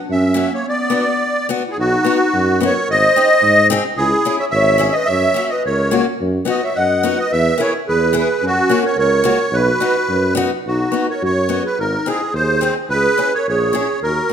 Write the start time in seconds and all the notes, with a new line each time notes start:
0.09 F#2 C#4 E5
0.34 A#3 C#4 F#4
0.52 A#3 C#5
0.66 B3 D5
0.90 B3 D4 F#4
1.49 B3 D4 F#4
1.67 E4 G#4
1.77 B1 D#4 F#4
2.04 B3 D#4 F#4
2.34 F#2
2.60 B3 D#4 F#4 A#4
2.66 C#5
2.89 G#1 C5 D#5
3.16 C4 D#4 G#4
3.42 G#2
3.70 C4 D#4 G#4
3.97 C#2 E4 G#4
4.25 C#4 E4 G#4
4.39 C#5 E5
4.51 G#1 E5
4.55 C#5
4.78 C#4 E4 G#4
4.93 B4 D#5
5.06 F#2 C#5 E5
5.34 A#3 C#4 F#4
5.50 B4 D#5
5.65 C#2 A#4 C#5
5.91 A#3 C#4 F#4
6.21 F#2
6.45 B3 D#4 F#4
6.50 B4 D#5
6.62 C#5 E5
6.76 F#2 D#5 F#5
7.03 B3 D#4 F#4
7.17 B4 D#5
7.31 E2 B4 E5
7.58 B3 E4 G#4 A#4 C#5
7.88 E2 G#4 B4
8.13 B3 E4 G#4
8.18 B4
8.42 F#2 C#4 F#4
8.69 A#3 C#4 F#4
8.84 A#4 C#5
8.98 C#2 A#4 C#5
9.24 A#3 C#4 F#4
9.52 B1 F#4 B4
9.80 B3 D#4 F#4
10.09 F#2
10.35 B3 D#4 F#4
10.66 B1 D#4 F#4
10.92 B3 D#4 F#4
11.09 A#4 C#5
11.21 F#2 F#4 C#5
11.49 B3 D#4 F#4
11.64 G#4 B4
11.79 G#1 D#4 A#4
12.06 C4 D#4 E4 G#4
12.34 D#2 C5
12.39 G#4
12.61 C4 D#4 G#4
12.89 C#2 B4
12.94 G#4
13.18 C#4 E4 G#4
13.35 A#4 C#5
13.48 A#1 G#4 C#5
13.73 C#4 E4 G#4
14.02 D#2 F#4 A#4
14.29 A#3